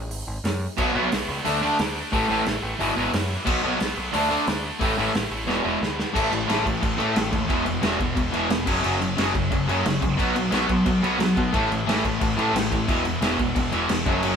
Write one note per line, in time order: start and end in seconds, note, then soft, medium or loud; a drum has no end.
0.00 0.11 A1 loud
0.11 0.22 G#1 loud
0.11 open hi-hat medium
0.27 0.38 G#1 medium
0.44 0.66 F#2 medium
0.44 snare loud
0.44 open hi-hat medium
0.78 0.89 B1 medium
0.78 0.92 B2 loud
0.78 0.92 F#3 loud
0.78 0.92 B3 medium
0.78 kick loud
0.78 crash loud
0.95 1.06 B1 loud
0.95 1.08 B2 loud
0.95 1.09 F#3 loud
0.95 1.09 B3 loud
1.12 1.23 B1 loud
1.12 1.30 B2 medium
1.12 1.28 F#3 medium
1.12 1.27 B3 medium
1.12 snare loud
1.12 open hi-hat medium
1.29 1.39 C#2 medium
1.29 1.44 B2 medium
1.29 1.45 F#3 medium
1.29 1.45 B3 medium
1.45 1.68 D2 medium
1.45 1.59 D3 loud
1.45 1.59 A3 loud
1.45 1.59 D4 loud
1.45 open hi-hat medium
1.62 1.76 D3 medium
1.62 1.76 A3 loud
1.62 1.76 D4 loud
1.79 2.01 D2 medium
1.79 1.95 D3 medium
1.79 1.95 A3 medium
1.79 1.94 D4 medium
1.79 snare loud
1.79 open hi-hat medium
1.95 2.11 D3 medium
1.95 2.12 A3 medium
1.95 2.11 D4 medium
2.12 2.24 A1 medium
2.12 2.26 A2 loud
2.12 2.26 E3 loud
2.12 2.27 A3 loud
2.12 kick loud
2.12 open hi-hat medium
2.29 2.41 A1 loud
2.29 2.43 A2 loud
2.29 2.43 E3 loud
2.29 2.43 A3 loud
2.45 2.57 A1 loud
2.45 2.63 A2 medium
2.45 2.63 E3 medium
2.45 2.62 A3 loud
2.45 snare loud
2.45 open hi-hat medium
2.63 2.74 A1 medium
2.63 2.80 A2 medium
2.63 2.80 E3 medium
2.63 2.79 A3 loud
2.79 2.91 G#1 loud
2.79 2.93 E2 loud
2.79 2.94 B2 loud
2.79 2.94 E3 loud
2.79 open hi-hat medium
2.97 3.07 G#1 medium
2.97 3.10 E2 medium
2.97 3.11 B2 medium
2.97 3.11 E3 loud
3.13 3.30 E2 loud
3.13 3.35 F#2 medium
3.13 3.29 B2 medium
3.13 3.29 E3 loud
3.13 snare loud
3.13 open hi-hat medium
3.30 3.47 E2 medium
3.30 3.45 B2 medium
3.30 3.46 E3 loud
3.45 3.58 B1 medium
3.45 3.60 B2 medium
3.45 3.60 F#3 loud
3.45 3.60 B3 loud
3.45 kick loud
3.45 crash loud
3.63 3.75 B1 loud
3.63 3.77 B2 medium
3.63 3.77 F#3 loud
3.63 3.77 B3 loud
3.79 3.92 B1 loud
3.79 3.96 B2 medium
3.79 3.95 F#3 medium
3.79 3.94 B3 medium
3.79 snare loud
3.79 open hi-hat medium
3.95 4.08 B1 medium
3.95 4.13 B2 medium
3.95 4.13 F#3 medium
3.95 4.12 B3 loud
4.13 4.36 D2 loud
4.13 4.27 D3 loud
4.13 4.28 A3 loud
4.13 4.28 D4 loud
4.13 open hi-hat medium
4.30 4.44 D3 loud
4.30 4.44 A3 loud
4.30 4.44 D4 loud
4.47 4.69 D2 medium
4.47 4.64 D3 medium
4.47 4.63 A3 medium
4.47 4.62 D4 loud
4.47 snare loud
4.47 open hi-hat medium
4.64 4.80 D3 medium
4.64 4.80 A3 medium
4.64 4.80 D4 medium
4.79 4.92 A1 medium
4.79 4.94 A2 medium
4.79 4.94 E3 loud
4.79 4.95 A3 loud
4.79 kick loud
4.79 open hi-hat medium
4.97 5.09 A1 loud
4.97 5.11 A2 loud
4.97 5.11 E3 medium
4.97 5.12 A3 loud
5.14 5.26 A1 loud
5.14 5.30 A2 medium
5.14 5.30 E3 medium
5.14 5.29 A3 loud
5.14 snare loud
5.14 open hi-hat medium
5.30 5.48 A1 medium
5.30 5.47 A2 medium
5.30 5.46 E3 medium
5.30 5.47 A3 medium
5.47 5.59 E1 loud
5.47 5.61 E2 loud
5.47 5.62 B2 loud
5.47 5.62 E3 loud
5.47 snare medium
5.63 5.76 E1 medium
5.63 5.78 E2 medium
5.63 5.78 B2 loud
5.63 5.78 E3 loud
5.80 6.04 D2 medium
5.80 5.98 E2 medium
5.80 5.97 B2 medium
5.80 5.96 E3 loud
5.80 snare loud
5.98 6.15 E2 medium
5.98 6.13 B2 medium
5.98 6.14 E3 loud
5.98 snare medium
6.13 6.29 A1 medium
6.13 6.30 A2 medium
6.13 6.30 E3 loud
6.13 6.31 A3 loud
6.13 kick loud
6.13 crash loud
6.13 crash medium
6.31 6.45 A1 medium
6.31 6.46 A2 medium
6.31 6.46 E3 medium
6.31 crash medium
6.47 6.62 A1 loud
6.47 6.63 A2 loud
6.47 6.63 E3 loud
6.47 6.65 A3 loud
6.47 snare loud
6.47 crash medium
6.64 6.79 A1 medium
6.64 6.80 A2 medium
6.64 6.80 E3 medium
6.64 7.15 A3 medium
6.64 kick medium
6.64 crash medium
6.69 7.14 A2 medium
6.81 6.96 A1 loud
6.81 6.96 A2 medium
6.81 6.97 E3 medium
6.81 kick loud
6.81 crash medium
6.97 7.14 A2 loud
6.97 7.13 A2 medium
6.97 7.14 E3 medium
6.97 7.15 A3 loud
6.97 crash medium
7.15 7.30 A1 medium
7.15 7.30 A2 medium
7.15 7.31 E3 medium
7.15 7.50 A3 loud
7.15 snare loud
7.15 crash loud
7.31 7.46 D#2 loud
7.31 7.48 A2 medium
7.31 7.48 E3 medium
7.31 kick medium
7.31 crash medium
7.48 7.76 E1 loud
7.48 7.64 E2 loud
7.48 7.64 B2 loud
7.48 7.66 E3 loud
7.48 kick loud
7.48 crash medium
7.65 7.80 E2 medium
7.65 7.81 B2 medium
7.65 crash medium
7.81 7.96 E1 medium
7.81 7.97 E2 loud
7.81 7.98 B2 loud
7.81 7.99 E3 loud
7.81 snare loud
7.81 crash medium
7.99 8.13 E1 medium
7.99 8.14 E2 medium
7.99 8.14 B2 medium
7.99 8.50 E3 medium
7.99 kick medium
7.99 crash medium
8.04 8.47 E2 medium
8.15 8.30 E1 loud
8.15 8.30 E2 medium
8.15 8.31 B2 medium
8.15 kick loud
8.15 crash medium
8.32 8.47 E1 medium
8.32 8.48 E2 medium
8.32 8.49 B2 loud
8.32 8.49 E3 medium
8.32 crash medium
8.49 8.64 E1 medium
8.49 8.65 E2 medium
8.49 8.65 B2 medium
8.49 8.68 E3 medium
8.49 snare loud
8.49 crash medium
8.65 8.81 F#1 medium
8.65 8.81 F#2 medium
8.65 8.82 C#3 medium
8.65 8.82 F#3 medium
8.65 kick loud
8.65 crash loud
8.82 8.98 F#1 medium
8.82 8.98 F#2 medium
8.82 8.99 C#3 loud
8.82 9.00 F#3 loud
8.82 crash medium
9.00 9.14 F#1 loud
9.00 9.15 F#2 medium
9.00 9.16 C#3 medium
9.00 crash medium
9.17 9.31 F#1 loud
9.17 9.32 F#2 medium
9.17 9.33 C#3 loud
9.17 9.34 F#3 loud
9.17 snare loud
9.17 crash medium
9.34 9.48 F#1 medium
9.34 9.50 F#2 medium
9.34 9.50 C#3 medium
9.34 kick medium
9.34 crash medium
9.51 9.65 F#1 medium
9.51 9.67 F#2 medium
9.51 9.67 C#3 medium
9.51 kick loud
9.51 crash medium
9.68 9.84 F#2 medium
9.68 9.82 F#2 medium
9.68 9.84 C#3 loud
9.68 9.85 F#3 medium
9.68 crash medium
9.85 9.98 F#1 loud
9.85 9.99 F#2 medium
9.85 10.00 C#3 medium
9.85 snare loud
9.85 crash medium
10.00 10.16 C#2 loud
10.00 10.17 F#2 medium
10.00 10.17 C#3 medium
10.00 kick medium
10.00 crash medium
10.17 10.46 B1 medium
10.17 10.34 B2 loud
10.17 10.34 F#3 loud
10.17 10.35 B3 loud
10.17 kick loud
10.17 crash medium
10.35 10.49 B2 medium
10.35 10.50 F#3 medium
10.35 crash medium
10.50 10.66 B1 loud
10.50 10.66 B2 loud
10.50 10.67 F#3 loud
10.50 10.68 B3 loud
10.50 snare loud
10.50 crash medium
10.67 10.83 B1 medium
10.67 10.84 B2 medium
10.67 10.84 F#3 medium
10.67 11.18 B3 loud
10.67 kick medium
10.67 crash medium
10.85 11.00 B1 medium
10.85 11.01 B2 medium
10.85 11.01 F#3 medium
10.85 kick loud
10.85 crash medium
11.02 11.16 B1 medium
11.02 11.17 B2 medium
11.02 11.18 F#3 loud
11.02 11.19 B3 loud
11.02 crash medium
11.18 11.33 B1 medium
11.18 11.35 B2 medium
11.18 11.35 F#3 medium
11.18 11.54 B3 medium
11.18 snare loud
11.18 crash medium
11.36 11.52 B2 medium
11.36 11.50 B2 medium
11.36 11.52 F#3 medium
11.36 kick medium
11.36 crash medium
11.52 11.67 A1 medium
11.52 11.68 A2 medium
11.52 11.68 E3 loud
11.52 11.69 A3 medium
11.52 kick loud
11.52 crash medium
11.69 11.84 A1 medium
11.69 11.85 A2 medium
11.69 11.85 E3 medium
11.69 crash medium
11.86 12.01 A1 loud
11.86 12.03 A2 loud
11.86 12.03 E3 loud
11.86 12.03 A3 loud
11.86 snare loud
11.86 crash medium
12.03 12.18 A1 medium
12.03 12.19 A2 medium
12.03 12.19 E3 medium
12.03 12.54 A3 medium
12.03 kick medium
12.03 crash medium
12.20 12.35 A1 loud
12.20 12.35 A2 medium
12.20 12.36 E3 medium
12.20 kick loud
12.20 crash medium
12.36 12.52 A2 medium
12.36 12.50 A2 medium
12.36 12.53 E3 medium
12.36 12.54 A3 medium
12.36 crash medium
12.53 12.67 A1 loud
12.53 12.69 A2 medium
12.53 12.70 E3 medium
12.53 12.88 A3 medium
12.53 snare loud
12.53 crash loud
12.71 12.85 A1 medium
12.71 12.86 A2 medium
12.71 12.87 E3 medium
12.71 kick medium
12.71 crash medium
12.87 13.15 E1 medium
12.87 13.02 E2 medium
12.87 13.03 B2 loud
12.87 13.04 E3 loud
12.87 kick loud
12.87 crash medium
13.03 13.20 E2 medium
13.03 13.20 B2 medium
13.03 crash medium
13.21 13.35 E1 loud
13.21 13.37 E2 medium
13.21 13.37 B2 loud
13.21 13.38 E3 loud
13.21 snare loud
13.21 crash medium
13.37 13.52 E1 medium
13.37 13.54 E2 medium
13.37 13.54 B2 medium
13.37 13.88 E3 medium
13.37 kick medium
13.37 crash medium
13.55 13.69 E1 loud
13.55 13.70 E2 medium
13.55 13.71 B2 medium
13.55 kick loud
13.55 crash medium
13.72 13.86 E1 medium
13.72 13.87 E2 medium
13.72 13.88 B2 medium
13.72 13.89 E3 loud
13.72 crash medium
13.89 14.03 E1 loud
13.89 14.04 E2 medium
13.89 14.05 B2 medium
13.89 14.07 E3 medium
13.89 snare loud
13.89 crash medium
14.06 14.20 F#1 loud
14.06 14.21 F#2 medium
14.06 14.22 C#3 medium
14.06 14.22 F#3 loud
14.06 kick loud
14.06 crash medium
14.23 14.36 F#1 medium
14.23 14.36 F#2 loud
14.23 14.36 C#3 medium
14.23 14.36 F#3 loud
14.23 crash medium